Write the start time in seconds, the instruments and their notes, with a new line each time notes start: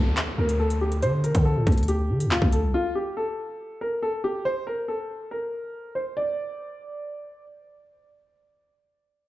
Already playing: 808-style bass D2, grand piano A4, downlifter
0.17 clap, closed hi-hat
0.38 808-style bass D2, grand piano A#4
0.49 closed hi-hat
0.59 grand piano A4
0.70 closed hi-hat
0.81 grand piano G4
0.92 closed hi-hat
1.02 808-style bass D3, grand piano C5, closed hi-hat
1.24 grand piano A#4, closed hi-hat
1.35 808-style bass D3, kick, closed hi-hat
1.45 grand piano A4
1.56 808-style bass A2
1.67 808-style bass D2, kick, closed hi-hat
1.72 closed hi-hat
1.77 closed hi-hat
1.83 closed hi-hat
1.88 grand piano G4, closed hi-hat
2.10 808-style bass D3
2.20 closed hi-hat
2.26 808-style bass D2
2.31 grand piano F4, clap
2.42 808-style bass D2, kick
2.52 grand piano A4, closed hi-hat
2.63 808-style bass C2
2.74 grand piano F4
2.95 grand piano G4
3.17 grand piano A4
3.81 grand piano A#4
4.03 grand piano A4
4.24 grand piano G4
4.45 grand piano C5
4.67 grand piano A#4
4.88 grand piano A4
5.31 grand piano A#4
5.95 grand piano C5
6.17 grand piano D5